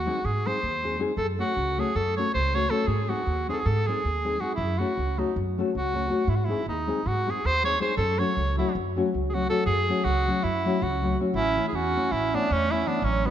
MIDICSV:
0, 0, Header, 1, 5, 480
1, 0, Start_track
1, 0, Tempo, 378788
1, 1481, Time_signature, 9, 3, 24, 8
1, 9156, Tempo, 374532
1, 16945, End_track
2, 0, Start_track
2, 0, Title_t, "Tenor saxophone"
2, 0, Program_c, 0, 66
2, 0, Note_on_c, 0, 66, 87
2, 316, Note_on_c, 0, 68, 93
2, 335, Note_off_c, 0, 66, 0
2, 591, Note_on_c, 0, 72, 95
2, 610, Note_off_c, 0, 68, 0
2, 1272, Note_off_c, 0, 72, 0
2, 1487, Note_on_c, 0, 69, 88
2, 1610, Note_off_c, 0, 69, 0
2, 1773, Note_on_c, 0, 66, 91
2, 2270, Note_on_c, 0, 68, 88
2, 2289, Note_off_c, 0, 66, 0
2, 2480, Note_on_c, 0, 69, 97
2, 2499, Note_off_c, 0, 68, 0
2, 2740, Note_off_c, 0, 69, 0
2, 2747, Note_on_c, 0, 73, 92
2, 2954, Note_off_c, 0, 73, 0
2, 2965, Note_on_c, 0, 72, 100
2, 3224, Note_on_c, 0, 73, 104
2, 3243, Note_off_c, 0, 72, 0
2, 3425, Note_on_c, 0, 69, 95
2, 3444, Note_off_c, 0, 73, 0
2, 3639, Note_on_c, 0, 68, 84
2, 3658, Note_off_c, 0, 69, 0
2, 3915, Note_on_c, 0, 66, 87
2, 3934, Note_off_c, 0, 68, 0
2, 4416, Note_off_c, 0, 66, 0
2, 4427, Note_on_c, 0, 68, 87
2, 4472, Note_on_c, 0, 69, 68
2, 4491, Note_off_c, 0, 68, 0
2, 4529, Note_on_c, 0, 68, 87
2, 4548, Note_off_c, 0, 69, 0
2, 4619, Note_on_c, 0, 69, 95
2, 4638, Note_off_c, 0, 68, 0
2, 4900, Note_on_c, 0, 68, 92
2, 4919, Note_off_c, 0, 69, 0
2, 5581, Note_on_c, 0, 66, 82
2, 5600, Note_off_c, 0, 68, 0
2, 5761, Note_off_c, 0, 66, 0
2, 5769, Note_on_c, 0, 64, 83
2, 6060, Note_on_c, 0, 66, 78
2, 6079, Note_off_c, 0, 64, 0
2, 6566, Note_on_c, 0, 63, 61
2, 6585, Note_off_c, 0, 66, 0
2, 6792, Note_off_c, 0, 63, 0
2, 7320, Note_on_c, 0, 66, 92
2, 7974, Note_on_c, 0, 64, 70
2, 7993, Note_off_c, 0, 66, 0
2, 8053, Note_on_c, 0, 66, 61
2, 8072, Note_off_c, 0, 64, 0
2, 8173, Note_on_c, 0, 64, 76
2, 8192, Note_off_c, 0, 66, 0
2, 8460, Note_off_c, 0, 64, 0
2, 8474, Note_on_c, 0, 63, 86
2, 8956, Note_on_c, 0, 66, 96
2, 8975, Note_off_c, 0, 63, 0
2, 9254, Note_on_c, 0, 68, 99
2, 9273, Note_off_c, 0, 66, 0
2, 9456, Note_on_c, 0, 72, 117
2, 9475, Note_off_c, 0, 68, 0
2, 9691, Note_off_c, 0, 72, 0
2, 9699, Note_on_c, 0, 73, 110
2, 9895, Note_off_c, 0, 73, 0
2, 9913, Note_on_c, 0, 72, 88
2, 10108, Note_off_c, 0, 72, 0
2, 10119, Note_on_c, 0, 69, 92
2, 10394, Note_on_c, 0, 73, 92
2, 10413, Note_off_c, 0, 69, 0
2, 10889, Note_off_c, 0, 73, 0
2, 10897, Note_on_c, 0, 64, 66
2, 11101, Note_off_c, 0, 64, 0
2, 11810, Note_on_c, 0, 68, 75
2, 11863, Note_on_c, 0, 66, 92
2, 11883, Note_off_c, 0, 68, 0
2, 12056, Note_off_c, 0, 66, 0
2, 12064, Note_on_c, 0, 69, 101
2, 12265, Note_off_c, 0, 69, 0
2, 12275, Note_on_c, 0, 68, 118
2, 12763, Note_on_c, 0, 66, 105
2, 12782, Note_off_c, 0, 68, 0
2, 13266, Note_on_c, 0, 64, 92
2, 13285, Note_off_c, 0, 66, 0
2, 13772, Note_on_c, 0, 66, 85
2, 13792, Note_off_c, 0, 64, 0
2, 14233, Note_off_c, 0, 66, 0
2, 14447, Note_on_c, 0, 64, 112
2, 14831, Note_off_c, 0, 64, 0
2, 14868, Note_on_c, 0, 68, 69
2, 14954, Note_on_c, 0, 66, 106
2, 14973, Note_off_c, 0, 68, 0
2, 15426, Note_on_c, 0, 64, 103
2, 15445, Note_off_c, 0, 66, 0
2, 15720, Note_on_c, 0, 62, 97
2, 15739, Note_off_c, 0, 64, 0
2, 15944, Note_on_c, 0, 61, 112
2, 15963, Note_off_c, 0, 62, 0
2, 16182, Note_on_c, 0, 64, 100
2, 16201, Note_off_c, 0, 61, 0
2, 16396, Note_on_c, 0, 62, 91
2, 16415, Note_off_c, 0, 64, 0
2, 16608, Note_on_c, 0, 61, 108
2, 16627, Note_off_c, 0, 62, 0
2, 16895, Note_on_c, 0, 59, 90
2, 16914, Note_off_c, 0, 61, 0
2, 16945, Note_off_c, 0, 59, 0
2, 16945, End_track
3, 0, Start_track
3, 0, Title_t, "Nylon-string guitar"
3, 0, Program_c, 1, 24
3, 72, Note_on_c, 1, 56, 73
3, 77, Note_on_c, 1, 60, 64
3, 86, Note_on_c, 1, 63, 67
3, 92, Note_on_c, 1, 68, 94
3, 225, Note_off_c, 1, 56, 0
3, 229, Note_off_c, 1, 60, 0
3, 231, Note_off_c, 1, 63, 0
3, 235, Note_off_c, 1, 68, 0
3, 586, Note_on_c, 1, 56, 70
3, 587, Note_on_c, 1, 60, 62
3, 594, Note_on_c, 1, 63, 63
3, 602, Note_on_c, 1, 68, 73
3, 730, Note_off_c, 1, 60, 0
3, 731, Note_off_c, 1, 56, 0
3, 735, Note_off_c, 1, 63, 0
3, 739, Note_off_c, 1, 68, 0
3, 1051, Note_on_c, 1, 56, 47
3, 1062, Note_on_c, 1, 60, 47
3, 1066, Note_on_c, 1, 63, 57
3, 1075, Note_on_c, 1, 68, 67
3, 1194, Note_off_c, 1, 56, 0
3, 1199, Note_off_c, 1, 60, 0
3, 1202, Note_off_c, 1, 63, 0
3, 1204, Note_off_c, 1, 68, 0
3, 1249, Note_on_c, 1, 56, 65
3, 1259, Note_on_c, 1, 60, 72
3, 1262, Note_on_c, 1, 63, 67
3, 1277, Note_on_c, 1, 68, 90
3, 1399, Note_off_c, 1, 56, 0
3, 1404, Note_off_c, 1, 60, 0
3, 1404, Note_off_c, 1, 63, 0
3, 1413, Note_off_c, 1, 68, 0
3, 1752, Note_on_c, 1, 57, 61
3, 1757, Note_on_c, 1, 61, 58
3, 1763, Note_on_c, 1, 66, 46
3, 1772, Note_on_c, 1, 69, 66
3, 1901, Note_off_c, 1, 57, 0
3, 1901, Note_off_c, 1, 61, 0
3, 1906, Note_off_c, 1, 66, 0
3, 1908, Note_off_c, 1, 69, 0
3, 2255, Note_on_c, 1, 57, 68
3, 2258, Note_on_c, 1, 61, 58
3, 2268, Note_on_c, 1, 66, 58
3, 2276, Note_on_c, 1, 69, 74
3, 2400, Note_off_c, 1, 57, 0
3, 2403, Note_off_c, 1, 61, 0
3, 2405, Note_off_c, 1, 66, 0
3, 2411, Note_off_c, 1, 69, 0
3, 2757, Note_on_c, 1, 57, 65
3, 2768, Note_on_c, 1, 61, 56
3, 2772, Note_on_c, 1, 66, 61
3, 2783, Note_on_c, 1, 69, 73
3, 2901, Note_off_c, 1, 57, 0
3, 2903, Note_off_c, 1, 61, 0
3, 2907, Note_off_c, 1, 66, 0
3, 2913, Note_off_c, 1, 69, 0
3, 3220, Note_on_c, 1, 57, 52
3, 3225, Note_on_c, 1, 61, 48
3, 3230, Note_on_c, 1, 66, 52
3, 3245, Note_on_c, 1, 69, 64
3, 3361, Note_off_c, 1, 57, 0
3, 3362, Note_off_c, 1, 61, 0
3, 3366, Note_off_c, 1, 66, 0
3, 3373, Note_off_c, 1, 69, 0
3, 3424, Note_on_c, 1, 57, 67
3, 3432, Note_on_c, 1, 61, 61
3, 3440, Note_on_c, 1, 66, 62
3, 3448, Note_on_c, 1, 69, 65
3, 3569, Note_off_c, 1, 57, 0
3, 3572, Note_off_c, 1, 61, 0
3, 3577, Note_off_c, 1, 66, 0
3, 3581, Note_off_c, 1, 69, 0
3, 3906, Note_on_c, 1, 56, 53
3, 3912, Note_on_c, 1, 60, 54
3, 3922, Note_on_c, 1, 63, 58
3, 3929, Note_on_c, 1, 68, 70
3, 4059, Note_off_c, 1, 56, 0
3, 4062, Note_off_c, 1, 60, 0
3, 4067, Note_off_c, 1, 63, 0
3, 4070, Note_off_c, 1, 68, 0
3, 4403, Note_on_c, 1, 56, 58
3, 4418, Note_on_c, 1, 60, 66
3, 4428, Note_on_c, 1, 63, 57
3, 4432, Note_on_c, 1, 68, 62
3, 4556, Note_off_c, 1, 56, 0
3, 4564, Note_off_c, 1, 60, 0
3, 4566, Note_off_c, 1, 63, 0
3, 4571, Note_off_c, 1, 68, 0
3, 4915, Note_on_c, 1, 56, 68
3, 4924, Note_on_c, 1, 60, 54
3, 4931, Note_on_c, 1, 63, 52
3, 4938, Note_on_c, 1, 68, 67
3, 5060, Note_off_c, 1, 56, 0
3, 5064, Note_off_c, 1, 60, 0
3, 5068, Note_off_c, 1, 63, 0
3, 5071, Note_off_c, 1, 68, 0
3, 5375, Note_on_c, 1, 56, 53
3, 5381, Note_on_c, 1, 60, 52
3, 5386, Note_on_c, 1, 63, 54
3, 5398, Note_on_c, 1, 68, 62
3, 5520, Note_off_c, 1, 56, 0
3, 5520, Note_off_c, 1, 60, 0
3, 5525, Note_off_c, 1, 63, 0
3, 5530, Note_off_c, 1, 68, 0
3, 5587, Note_on_c, 1, 56, 63
3, 5598, Note_on_c, 1, 60, 50
3, 5603, Note_on_c, 1, 63, 64
3, 5611, Note_on_c, 1, 68, 68
3, 5731, Note_off_c, 1, 56, 0
3, 5737, Note_off_c, 1, 60, 0
3, 5737, Note_off_c, 1, 63, 0
3, 5742, Note_off_c, 1, 68, 0
3, 6073, Note_on_c, 1, 57, 50
3, 6080, Note_on_c, 1, 61, 47
3, 6091, Note_on_c, 1, 66, 48
3, 6091, Note_on_c, 1, 69, 67
3, 6223, Note_off_c, 1, 57, 0
3, 6226, Note_off_c, 1, 61, 0
3, 6231, Note_off_c, 1, 69, 0
3, 6232, Note_off_c, 1, 66, 0
3, 6562, Note_on_c, 1, 57, 67
3, 6569, Note_on_c, 1, 61, 52
3, 6570, Note_on_c, 1, 66, 59
3, 6581, Note_on_c, 1, 69, 72
3, 6715, Note_off_c, 1, 57, 0
3, 6717, Note_off_c, 1, 61, 0
3, 6719, Note_off_c, 1, 66, 0
3, 6724, Note_off_c, 1, 69, 0
3, 7071, Note_on_c, 1, 57, 78
3, 7078, Note_on_c, 1, 61, 69
3, 7086, Note_on_c, 1, 66, 75
3, 7092, Note_on_c, 1, 69, 84
3, 7216, Note_off_c, 1, 57, 0
3, 7220, Note_off_c, 1, 61, 0
3, 7225, Note_off_c, 1, 66, 0
3, 7226, Note_off_c, 1, 69, 0
3, 7517, Note_on_c, 1, 57, 56
3, 7528, Note_on_c, 1, 61, 50
3, 7532, Note_on_c, 1, 66, 56
3, 7542, Note_on_c, 1, 69, 61
3, 7668, Note_off_c, 1, 57, 0
3, 7674, Note_off_c, 1, 61, 0
3, 7674, Note_off_c, 1, 66, 0
3, 7680, Note_off_c, 1, 69, 0
3, 7721, Note_on_c, 1, 57, 64
3, 7733, Note_on_c, 1, 61, 54
3, 7739, Note_on_c, 1, 66, 66
3, 7749, Note_on_c, 1, 69, 71
3, 7875, Note_off_c, 1, 57, 0
3, 7881, Note_off_c, 1, 61, 0
3, 7884, Note_off_c, 1, 66, 0
3, 7889, Note_off_c, 1, 69, 0
3, 8209, Note_on_c, 1, 56, 60
3, 8217, Note_on_c, 1, 60, 57
3, 8226, Note_on_c, 1, 63, 52
3, 8239, Note_on_c, 1, 68, 72
3, 8367, Note_off_c, 1, 56, 0
3, 8371, Note_off_c, 1, 60, 0
3, 8376, Note_off_c, 1, 63, 0
3, 8383, Note_off_c, 1, 68, 0
3, 8704, Note_on_c, 1, 56, 64
3, 8710, Note_on_c, 1, 60, 59
3, 8720, Note_on_c, 1, 63, 60
3, 8729, Note_on_c, 1, 68, 68
3, 8862, Note_off_c, 1, 56, 0
3, 8864, Note_off_c, 1, 60, 0
3, 8871, Note_off_c, 1, 63, 0
3, 8872, Note_off_c, 1, 68, 0
3, 9207, Note_on_c, 1, 56, 64
3, 9217, Note_on_c, 1, 60, 58
3, 9221, Note_on_c, 1, 63, 61
3, 9233, Note_on_c, 1, 68, 79
3, 9361, Note_off_c, 1, 56, 0
3, 9367, Note_off_c, 1, 60, 0
3, 9367, Note_off_c, 1, 63, 0
3, 9375, Note_off_c, 1, 68, 0
3, 9676, Note_on_c, 1, 56, 52
3, 9683, Note_on_c, 1, 60, 51
3, 9691, Note_on_c, 1, 63, 58
3, 9702, Note_on_c, 1, 68, 66
3, 9827, Note_off_c, 1, 56, 0
3, 9828, Note_off_c, 1, 60, 0
3, 9834, Note_off_c, 1, 63, 0
3, 9839, Note_off_c, 1, 68, 0
3, 9892, Note_on_c, 1, 56, 73
3, 9896, Note_on_c, 1, 60, 59
3, 9908, Note_on_c, 1, 63, 64
3, 9914, Note_on_c, 1, 68, 80
3, 10041, Note_off_c, 1, 56, 0
3, 10041, Note_off_c, 1, 60, 0
3, 10048, Note_off_c, 1, 63, 0
3, 10051, Note_off_c, 1, 68, 0
3, 10376, Note_on_c, 1, 54, 51
3, 10384, Note_on_c, 1, 57, 58
3, 10390, Note_on_c, 1, 61, 59
3, 10399, Note_on_c, 1, 66, 68
3, 10532, Note_off_c, 1, 54, 0
3, 10536, Note_off_c, 1, 57, 0
3, 10538, Note_off_c, 1, 61, 0
3, 10543, Note_off_c, 1, 66, 0
3, 10881, Note_on_c, 1, 54, 57
3, 10882, Note_on_c, 1, 57, 61
3, 10896, Note_on_c, 1, 61, 57
3, 10904, Note_on_c, 1, 66, 67
3, 11033, Note_off_c, 1, 54, 0
3, 11033, Note_off_c, 1, 57, 0
3, 11042, Note_off_c, 1, 61, 0
3, 11043, Note_off_c, 1, 66, 0
3, 11379, Note_on_c, 1, 54, 85
3, 11384, Note_on_c, 1, 57, 74
3, 11394, Note_on_c, 1, 61, 69
3, 11400, Note_on_c, 1, 66, 86
3, 11531, Note_off_c, 1, 57, 0
3, 11532, Note_off_c, 1, 54, 0
3, 11538, Note_off_c, 1, 61, 0
3, 11541, Note_off_c, 1, 66, 0
3, 11854, Note_on_c, 1, 54, 58
3, 11859, Note_on_c, 1, 57, 53
3, 11868, Note_on_c, 1, 61, 55
3, 11873, Note_on_c, 1, 66, 55
3, 11998, Note_off_c, 1, 54, 0
3, 11998, Note_off_c, 1, 57, 0
3, 12004, Note_off_c, 1, 61, 0
3, 12006, Note_off_c, 1, 66, 0
3, 12068, Note_on_c, 1, 54, 56
3, 12074, Note_on_c, 1, 57, 60
3, 12079, Note_on_c, 1, 61, 62
3, 12082, Note_on_c, 1, 66, 76
3, 12210, Note_off_c, 1, 54, 0
3, 12213, Note_off_c, 1, 57, 0
3, 12216, Note_off_c, 1, 61, 0
3, 12216, Note_off_c, 1, 66, 0
3, 12569, Note_on_c, 1, 54, 56
3, 12577, Note_on_c, 1, 57, 53
3, 12584, Note_on_c, 1, 61, 59
3, 12589, Note_on_c, 1, 66, 62
3, 12710, Note_off_c, 1, 54, 0
3, 12712, Note_off_c, 1, 57, 0
3, 12717, Note_off_c, 1, 61, 0
3, 12719, Note_off_c, 1, 66, 0
3, 13063, Note_on_c, 1, 54, 68
3, 13071, Note_on_c, 1, 57, 53
3, 13082, Note_on_c, 1, 61, 64
3, 13089, Note_on_c, 1, 66, 67
3, 13204, Note_off_c, 1, 54, 0
3, 13208, Note_off_c, 1, 57, 0
3, 13215, Note_off_c, 1, 61, 0
3, 13216, Note_off_c, 1, 66, 0
3, 13545, Note_on_c, 1, 54, 65
3, 13553, Note_on_c, 1, 57, 68
3, 13559, Note_on_c, 1, 61, 65
3, 13567, Note_on_c, 1, 66, 77
3, 13694, Note_off_c, 1, 54, 0
3, 13696, Note_off_c, 1, 57, 0
3, 13700, Note_off_c, 1, 61, 0
3, 13704, Note_off_c, 1, 66, 0
3, 14018, Note_on_c, 1, 54, 58
3, 14037, Note_on_c, 1, 57, 59
3, 14042, Note_on_c, 1, 61, 50
3, 14046, Note_on_c, 1, 66, 70
3, 14158, Note_off_c, 1, 54, 0
3, 14168, Note_off_c, 1, 57, 0
3, 14169, Note_off_c, 1, 61, 0
3, 14173, Note_off_c, 1, 66, 0
3, 14237, Note_on_c, 1, 54, 63
3, 14250, Note_on_c, 1, 57, 58
3, 14258, Note_on_c, 1, 61, 63
3, 14264, Note_on_c, 1, 66, 65
3, 14374, Note_off_c, 1, 54, 0
3, 14380, Note_off_c, 1, 57, 0
3, 14384, Note_off_c, 1, 61, 0
3, 14387, Note_off_c, 1, 66, 0
3, 14717, Note_on_c, 1, 52, 63
3, 14723, Note_on_c, 1, 57, 45
3, 14733, Note_on_c, 1, 61, 52
3, 14743, Note_on_c, 1, 64, 65
3, 14862, Note_off_c, 1, 52, 0
3, 14866, Note_off_c, 1, 57, 0
3, 14870, Note_off_c, 1, 61, 0
3, 14876, Note_off_c, 1, 64, 0
3, 15218, Note_on_c, 1, 52, 60
3, 15224, Note_on_c, 1, 57, 52
3, 15232, Note_on_c, 1, 61, 51
3, 15238, Note_on_c, 1, 64, 73
3, 15360, Note_off_c, 1, 52, 0
3, 15363, Note_off_c, 1, 57, 0
3, 15368, Note_off_c, 1, 64, 0
3, 15369, Note_off_c, 1, 61, 0
3, 15689, Note_on_c, 1, 52, 65
3, 15703, Note_on_c, 1, 57, 59
3, 15711, Note_on_c, 1, 61, 61
3, 15720, Note_on_c, 1, 64, 74
3, 15844, Note_off_c, 1, 52, 0
3, 15850, Note_off_c, 1, 57, 0
3, 15854, Note_off_c, 1, 61, 0
3, 15859, Note_off_c, 1, 64, 0
3, 16168, Note_on_c, 1, 52, 55
3, 16175, Note_on_c, 1, 57, 53
3, 16181, Note_on_c, 1, 61, 54
3, 16190, Note_on_c, 1, 64, 61
3, 16311, Note_off_c, 1, 52, 0
3, 16315, Note_off_c, 1, 57, 0
3, 16318, Note_off_c, 1, 61, 0
3, 16322, Note_off_c, 1, 64, 0
3, 16383, Note_on_c, 1, 52, 63
3, 16393, Note_on_c, 1, 57, 54
3, 16401, Note_on_c, 1, 61, 60
3, 16409, Note_on_c, 1, 64, 70
3, 16524, Note_off_c, 1, 52, 0
3, 16529, Note_off_c, 1, 57, 0
3, 16533, Note_off_c, 1, 61, 0
3, 16537, Note_off_c, 1, 64, 0
3, 16875, Note_on_c, 1, 50, 59
3, 16885, Note_on_c, 1, 54, 53
3, 16893, Note_on_c, 1, 59, 50
3, 16900, Note_on_c, 1, 62, 64
3, 16945, Note_off_c, 1, 50, 0
3, 16945, Note_off_c, 1, 54, 0
3, 16945, Note_off_c, 1, 59, 0
3, 16945, Note_off_c, 1, 62, 0
3, 16945, End_track
4, 0, Start_track
4, 0, Title_t, "Clarinet"
4, 0, Program_c, 2, 71
4, 14448, Note_on_c, 2, 61, 98
4, 14831, Note_off_c, 2, 61, 0
4, 14854, Note_on_c, 2, 64, 75
4, 14954, Note_on_c, 2, 61, 82
4, 14973, Note_off_c, 2, 64, 0
4, 15460, Note_off_c, 2, 61, 0
4, 15460, Note_on_c, 2, 61, 86
4, 15733, Note_on_c, 2, 59, 69
4, 15752, Note_off_c, 2, 61, 0
4, 15951, Note_on_c, 2, 57, 83
4, 15970, Note_off_c, 2, 59, 0
4, 16199, Note_on_c, 2, 61, 74
4, 16218, Note_off_c, 2, 57, 0
4, 16389, Note_on_c, 2, 59, 79
4, 16408, Note_off_c, 2, 61, 0
4, 16601, Note_on_c, 2, 54, 94
4, 16621, Note_off_c, 2, 59, 0
4, 16898, Note_on_c, 2, 56, 73
4, 16917, Note_off_c, 2, 54, 0
4, 16945, Note_off_c, 2, 56, 0
4, 16945, End_track
5, 0, Start_track
5, 0, Title_t, "Upright bass"
5, 0, Program_c, 3, 32
5, 312, Note_on_c, 3, 44, 76
5, 610, Note_off_c, 3, 44, 0
5, 801, Note_on_c, 3, 39, 74
5, 1207, Note_off_c, 3, 39, 0
5, 1481, Note_on_c, 3, 42, 82
5, 1780, Note_off_c, 3, 42, 0
5, 1980, Note_on_c, 3, 37, 78
5, 2278, Note_off_c, 3, 37, 0
5, 2476, Note_on_c, 3, 42, 87
5, 2774, Note_off_c, 3, 42, 0
5, 2974, Note_on_c, 3, 37, 69
5, 3378, Note_off_c, 3, 37, 0
5, 3641, Note_on_c, 3, 44, 89
5, 3940, Note_off_c, 3, 44, 0
5, 4137, Note_on_c, 3, 39, 78
5, 4437, Note_off_c, 3, 39, 0
5, 4634, Note_on_c, 3, 44, 91
5, 4933, Note_off_c, 3, 44, 0
5, 5126, Note_on_c, 3, 39, 81
5, 5532, Note_off_c, 3, 39, 0
5, 5799, Note_on_c, 3, 42, 95
5, 6099, Note_off_c, 3, 42, 0
5, 6305, Note_on_c, 3, 37, 74
5, 6601, Note_off_c, 3, 37, 0
5, 6793, Note_on_c, 3, 42, 85
5, 7091, Note_off_c, 3, 42, 0
5, 7287, Note_on_c, 3, 37, 72
5, 7691, Note_off_c, 3, 37, 0
5, 7951, Note_on_c, 3, 44, 86
5, 8250, Note_off_c, 3, 44, 0
5, 8445, Note_on_c, 3, 39, 73
5, 8745, Note_off_c, 3, 39, 0
5, 8944, Note_on_c, 3, 44, 85
5, 9243, Note_off_c, 3, 44, 0
5, 9441, Note_on_c, 3, 39, 76
5, 9847, Note_off_c, 3, 39, 0
5, 10115, Note_on_c, 3, 42, 99
5, 10415, Note_off_c, 3, 42, 0
5, 10620, Note_on_c, 3, 37, 82
5, 10917, Note_off_c, 3, 37, 0
5, 11111, Note_on_c, 3, 42, 88
5, 11410, Note_off_c, 3, 42, 0
5, 11613, Note_on_c, 3, 37, 72
5, 12016, Note_off_c, 3, 37, 0
5, 12276, Note_on_c, 3, 42, 86
5, 12576, Note_off_c, 3, 42, 0
5, 12772, Note_on_c, 3, 37, 86
5, 13072, Note_off_c, 3, 37, 0
5, 13274, Note_on_c, 3, 42, 83
5, 13572, Note_off_c, 3, 42, 0
5, 13760, Note_on_c, 3, 37, 92
5, 14166, Note_off_c, 3, 37, 0
5, 14427, Note_on_c, 3, 33, 91
5, 14729, Note_off_c, 3, 33, 0
5, 14926, Note_on_c, 3, 40, 81
5, 15227, Note_off_c, 3, 40, 0
5, 15421, Note_on_c, 3, 33, 71
5, 15722, Note_off_c, 3, 33, 0
5, 15923, Note_on_c, 3, 40, 87
5, 16327, Note_off_c, 3, 40, 0
5, 16583, Note_on_c, 3, 33, 98
5, 16884, Note_off_c, 3, 33, 0
5, 16945, End_track
0, 0, End_of_file